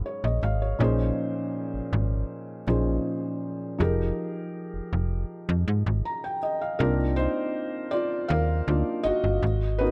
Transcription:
0.00 0.38 G#2 medium
0.00 0.38 F#3 medium
0.00 0.39 B3 medium
0.00 0.39 C#4 medium
0.00 0.40 A#4 medium
0.06 0.23 C#5 medium
0.24 0.40 A#1 medium
0.24 0.42 D#5 medium
0.43 0.75 G#1 medium
0.43 0.61 F5 medium
0.62 0.97 C#5 medium
0.79 1.12 A#1 loud
0.79 2.63 A#2 medium
0.79 2.63 F3 medium
0.79 2.64 C#4 medium
0.79 2.64 D#4 medium
0.79 2.64 G#4 medium
0.79 2.65 C5 medium
1.74 1.81 G#1 soft
1.93 2.25 G#1 loud
2.67 2.99 A#1 medium
2.67 3.80 A#2 medium
2.67 3.77 F3 medium
2.67 3.80 C#4 medium
2.67 3.78 D#4 medium
2.67 3.80 G#4 medium
2.67 3.81 C5 medium
3.78 4.12 F1 loud
3.78 6.38 F3 medium
3.78 6.38 D#4 medium
3.78 6.39 G4 medium
3.78 6.39 G#4 medium
3.78 6.40 A#4 medium
4.74 4.81 F1 soft
4.93 5.25 F1 medium
5.49 5.65 F2 loud
5.68 5.83 G#2 loud
5.86 6.02 G#1 loud
6.05 6.23 A#5 medium
6.24 6.42 G5 medium
6.43 6.60 D#5 medium
6.61 6.97 F5 medium
6.79 7.28 C2 loud
6.79 8.66 A#3 medium
6.79 9.38 C4 medium
6.79 7.15 D4 medium
6.79 7.17 D#4 medium
6.79 7.92 F4 medium
6.79 7.14 A#4 loud
7.16 7.89 D#4 medium
7.16 7.88 C5 loud
7.91 8.28 F4 medium
7.91 8.30 D5 loud
8.28 8.62 D#2 loud
8.28 9.01 A#4 medium
8.28 9.06 F5 loud
8.68 8.84 D2 loud
8.68 9.01 A#3 medium
8.68 9.01 D4 soft
8.68 9.01 D#4 soft
8.68 9.02 F4 medium
9.03 9.12 G1 soft
9.03 9.76 F#4 medium
9.03 9.81 D#5 loud
9.24 9.40 G1 medium
9.43 9.91 G#1 loud
9.79 9.91 B3 medium
9.79 9.91 C#4 medium
9.79 9.91 D#4 medium
9.79 9.91 F#4 medium
9.79 9.91 A#4 medium
9.79 9.91 B4 medium

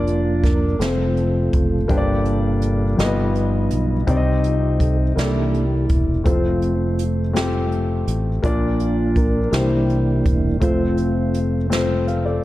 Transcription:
0.00 0.76 F1 medium
0.00 0.76 F3 soft
0.00 0.65 A#3 medium
0.00 0.76 A#3 soft
0.00 0.65 D4 medium
0.00 0.77 D4 soft
0.00 0.66 F4 medium
0.00 0.66 D5 medium
0.07 0.45 F4 medium
0.07 closed hi-hat soft
0.44 0.81 A#4 medium
0.44 kick medium
0.44 snare soft
0.44 closed hi-hat medium
0.79 1.49 F1 medium
0.79 3.31 C3 soft
0.79 1.85 F3 soft
0.79 1.74 A3 medium
0.79 1.85 A3 soft
0.79 1.75 C4 soft
0.79 1.85 C4 medium
0.79 3.31 F4 medium
0.79 1.75 F4 soft
0.79 3.31 A4 soft
0.79 1.76 C5 medium
0.79 snare medium
0.79 closed hi-hat medium
1.17 closed hi-hat soft
1.53 1.87 F#1 medium
1.53 kick medium
1.53 closed hi-hat medium
1.88 2.95 G1 medium
1.88 2.95 G2 medium
1.88 2.94 G3 soft
1.88 2.83 A#3 medium
1.88 2.95 A#3 soft
1.88 2.84 D4 medium
1.88 2.95 D4 soft
1.88 2.84 G4 medium
1.88 1.97 C5 medium
1.88 kick medium
1.88 closed hi-hat medium
1.98 2.88 D5 medium
2.25 closed hi-hat soft
2.62 closed hi-hat medium
2.97 3.67 G1 medium
2.97 4.04 G2 medium
2.97 4.03 F3 soft
2.97 3.04 A#3 medium
2.97 4.04 B3 soft
2.97 4.04 D#4 medium
2.97 3.93 F4 medium
2.97 3.93 G4 medium
2.97 3.94 D#5 medium
2.97 snare medium
2.97 closed hi-hat medium
3.03 3.95 B3 medium
3.35 closed hi-hat soft
3.71 4.05 B1 medium
3.71 closed hi-hat medium
4.07 5.13 C2 medium
4.07 5.13 C3 medium
4.07 5.13 G3 soft
4.07 5.02 C4 medium
4.07 5.13 C4 soft
4.07 5.02 D#4 medium
4.07 5.13 D#4 soft
4.07 5.03 G4 medium
4.07 4.16 D5 medium
4.07 kick medium
4.07 closed hi-hat medium
4.17 5.07 D#5 medium
4.44 4.79 F4 medium
4.44 closed hi-hat soft
4.80 4.97 A4 medium
4.80 kick medium
4.80 closed hi-hat medium
5.16 5.86 C2 medium
5.16 6.22 C3 soft
5.16 5.65 E3 soft
5.16 6.11 A#3 medium
5.16 5.65 A#3 soft
5.16 5.65 D4 medium
5.16 6.11 E4 medium
5.16 6.22 E4 soft
5.16 5.86 G4 medium
5.16 5.65 A4 soft
5.16 6.12 A4 soft
5.16 6.12 D5 medium
5.16 snare medium
5.16 closed hi-hat medium
5.54 closed hi-hat soft
5.89 6.23 E1 medium
5.89 kick medium
5.89 closed hi-hat medium
6.24 8.03 F1 medium
6.24 6.74 F3 soft
6.24 7.19 A3 medium
6.24 7.31 A3 medium
6.24 7.20 C4 medium
6.24 6.75 C4 medium
6.24 7.20 F4 medium
6.24 7.04 F4 medium
6.24 7.21 C5 medium
6.24 kick medium
6.24 closed hi-hat medium
6.62 closed hi-hat soft
6.99 closed hi-hat medium
7.33 7.67 F3 soft
7.33 8.28 A3 medium
7.33 7.67 A3 soft
7.33 8.29 C4 medium
7.33 7.67 C4 soft
7.33 8.29 F4 medium
7.33 8.30 G4 medium
7.33 snare medium
7.33 closed hi-hat medium
7.72 closed hi-hat soft
8.07 8.41 A1 medium
8.07 closed hi-hat medium
8.43 9.49 A#1 medium
8.43 9.49 A#2 medium
8.43 9.48 F3 soft
8.43 9.37 A#3 medium
8.43 9.49 A#3 soft
8.43 9.38 D4 medium
8.43 9.49 D4 medium
8.43 9.38 F4 medium
8.43 9.39 D5 medium
8.43 kick medium
8.43 closed hi-hat medium
8.80 9.18 F4 medium
8.80 closed hi-hat soft
9.16 9.54 A#4 medium
9.16 kick medium
9.16 closed hi-hat medium
9.51 10.21 C2 medium
9.51 10.58 C3 medium
9.51 10.57 E3 medium
9.51 10.46 A#3 medium
9.51 10.58 A#3 medium
9.51 10.58 D4 medium
9.51 10.58 E4 medium
9.51 10.47 E4 medium
9.51 10.21 G4 medium
9.51 10.47 G4 medium
9.51 10.48 C5 medium
9.51 snare medium
9.51 closed hi-hat medium
9.90 closed hi-hat soft
10.26 10.59 E1 medium
10.26 kick medium
10.26 closed hi-hat medium
10.60 12.39 F1 medium
10.60 11.10 F3 soft
10.60 11.55 A3 medium
10.60 11.67 A3 medium
10.60 11.56 C4 medium
10.60 11.67 C4 medium
10.60 11.39 F4 loud
10.60 11.56 F4 medium
10.60 11.57 C5 medium
10.60 kick medium
10.60 closed hi-hat medium
10.97 closed hi-hat soft
11.34 closed hi-hat medium
11.70 12.44 A3 medium
11.70 12.44 C4 medium
11.70 12.07 F4 medium
11.70 12.06 C5 medium
11.70 snare medium
11.70 closed hi-hat medium
12.07 12.25 C5 soft
12.07 12.24 F5 medium
12.07 closed hi-hat soft
12.26 12.43 A4 soft
12.26 12.42 D5 medium

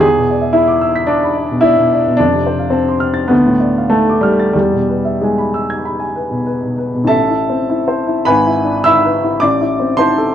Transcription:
0.00 2.14 E2 medium
0.00 0.55 G#4 loud
0.17 0.38 B2 soft
0.31 0.51 D5 medium
0.41 0.63 E5 medium
0.53 1.08 E4 medium
0.53 0.77 B5 soft
0.68 0.90 D6 medium
0.81 1.04 E6 medium
0.96 1.18 B6 medium
1.07 1.63 D4 loud
1.07 1.31 D6 medium
1.23 1.45 B5 medium
1.37 1.60 D5 medium
1.51 1.73 B2 soft
1.61 1.91 E4 loud
1.61 1.86 D5 medium
1.77 2.00 B2 soft
1.93 2.15 D5 medium
2.07 2.21 B2 soft
2.17 3.28 F2 medium
2.17 2.73 D4 loud
2.33 2.55 C3 soft
2.46 2.69 C5 medium
2.59 2.82 F5 soft
2.70 3.29 C4 medium
2.70 2.96 A5 soft
2.89 3.11 C6 medium
3.00 3.25 F6 medium
3.14 3.30 A6 medium
3.28 4.52 D2 medium
3.28 3.90 B3 medium
3.46 3.70 A2 soft
3.60 3.85 D5 medium
3.78 4.02 F5 soft
3.90 4.22 A3 medium
3.90 4.17 A5 medium
4.09 4.34 D6 medium
4.21 4.52 G3 medium
4.21 4.49 F6 medium
4.39 4.56 A6 soft
4.53 7.07 E2 medium
4.53 5.21 G3 medium
4.73 5.00 B2 soft
4.89 5.16 B4 soft
5.05 5.32 E5 soft
5.21 6.49 G#3 medium
5.21 5.49 G#5 soft
5.38 5.64 B5 soft
5.54 5.80 E6 medium
5.70 5.96 G#6 medium
5.85 6.11 B5 medium
6.00 6.26 G#5 soft
6.16 6.42 B4 soft
6.31 6.57 B2 soft
6.46 6.73 B4 soft
6.63 6.89 B2 soft
6.78 7.04 B4 soft
6.95 7.10 B2 soft
7.04 8.20 A1 medium
7.04 8.25 A5 medium
7.08 8.22 A4 medium
7.08 8.22 E5 medium
7.29 7.61 E4 medium
7.49 7.80 C4 medium
7.70 8.00 E4 medium
7.88 8.19 C5 medium
8.07 8.27 E4 medium
8.25 9.37 G#1 medium
8.25 8.80 B4 medium
8.25 8.80 G#5 medium
8.25 8.84 B5 loud
8.47 8.77 E4 medium
8.64 8.95 D4 medium
8.84 9.15 E4 medium
8.84 9.37 E5 medium
8.84 9.37 B5 medium
8.84 9.40 E6 loud
9.05 9.34 B4 medium
9.24 9.41 E4 medium
9.40 10.35 A1 medium
9.40 9.94 D5 medium
9.40 9.98 D6 loud
9.61 9.91 E4 medium
9.80 10.10 C4 medium
9.97 10.29 E4 medium
9.97 10.35 C5 medium
9.97 10.35 A5 medium
9.97 10.35 C6 loud
10.18 10.35 A4 medium

